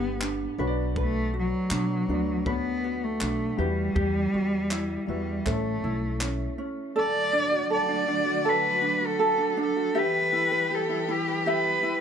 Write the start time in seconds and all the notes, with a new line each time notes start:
Already playing: G1 B3 D4 G4 B4 D5 E5
0.21 D4, clap
0.58 B1 B3 D4 F#4 B4 C#5
0.67 D5
0.96 B4, kick
1.02 A3
1.34 F#4
1.39 F#3
1.71 B2 D4, clap
2.08 D2 B3 D4 F#4 D5
2.45 B3 D4 F#4 B4 C#5, kick
2.49 B3
2.84 F#4
3.04 A3
3.21 B1 D4, clap
3.57 E2 G3 E4 F#4 G4 B4
3.95 E2 G4, kick
4.34 E2 F#4
4.71 E4, clap
5.07 E2 G3 E4 F#4 B4
5.45 A1 A3 C#4 E4 A4 C5, kick, clap
5.53 C#5
5.84 B1 E4
6.21 C#4, clap
6.58 C#4
6.96 D3 F#3 A3 F#4 A4 D5
7.33 D4
7.51 F#4
7.70 A4 D5
7.89 D4
8.08 D4
8.26 F#4
8.45 A4 B4 D5
8.82 D4
9.01 F#4
9.06 A4
9.19 A4
9.38 D4
9.57 D4
9.62 A4
9.76 F#4
9.95 E3 G3 B3 G4 B4 E5
10.33 E4
10.51 B4
10.71 G4 A4
10.89 E4
11.08 E4 G4
11.28 B4
11.46 G4 B4 E5
11.83 E4